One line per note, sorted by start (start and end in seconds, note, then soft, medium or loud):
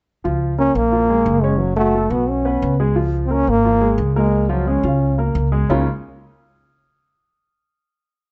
0.24 0.72 C#2 medium
0.24 0.52 F3 medium
0.24 0.52 F4 medium
0.58 0.86 A#3 medium
0.58 0.78 C#4 loud
0.58 0.86 A#4 medium
0.75 1.23 A#1 medium
0.75 1.43 A#3 loud
0.92 1.06 F3 medium
0.92 1.06 F4 medium
1.09 1.37 G#3 medium
1.09 1.37 G#4 medium
1.26 2.05 F#1 medium
1.42 1.58 G#3 medium
1.42 1.71 C#4 medium
1.42 1.72 C#5 medium
1.57 1.61 E3 medium
1.57 1.75 F#3 medium
1.76 1.91 F#3 medium
1.76 2.12 A3 medium
1.76 1.92 F#4 medium
1.95 2.08 A3 medium
1.95 2.09 A4 medium
2.10 2.58 B1 medium
2.10 2.31 B3 medium
2.10 2.39 F#4 medium
2.10 2.40 F#5 medium
2.30 2.80 C#4 medium
2.45 2.73 B3 medium
2.45 2.73 B4 medium
2.62 3.42 C#2 medium
2.80 2.93 G#3 medium
2.80 2.94 G#4 medium
2.96 3.24 F3 medium
2.96 3.24 F4 medium
3.26 3.34 C4 medium
3.30 3.58 A#3 medium
3.30 3.51 C#4 loud
3.30 3.59 A#4 medium
3.47 3.95 G#1 medium
3.47 4.00 A#3 loud
3.65 3.79 F3 medium
3.65 3.79 F4 medium
3.81 4.09 G#3 medium
3.81 4.09 G#4 medium
3.98 4.78 C#2 medium
4.16 4.51 G#3 medium
4.16 4.44 A#3 medium
4.16 4.44 A#4 medium
4.49 4.64 F3 medium
4.49 4.69 F#3 medium
4.49 4.64 F4 medium
4.67 4.81 G#3 medium
4.67 5.18 C#4 medium
4.67 4.81 G#4 medium
4.83 5.31 C#2 medium
4.83 5.12 F4 medium
4.83 5.12 F5 medium
5.18 5.46 A#3 medium
5.18 5.47 A#4 medium
5.35 5.65 C#2 loud
5.52 5.66 G#3 medium
5.52 5.66 G#4 medium
5.69 5.85 C#2 medium
5.69 5.85 C#3 medium
5.69 5.86 G#3 medium
5.69 5.86 A#3 medium
5.69 5.85 C#4 medium
5.69 5.86 C#4 medium
5.69 5.86 D#4 medium
5.69 5.86 F4 loud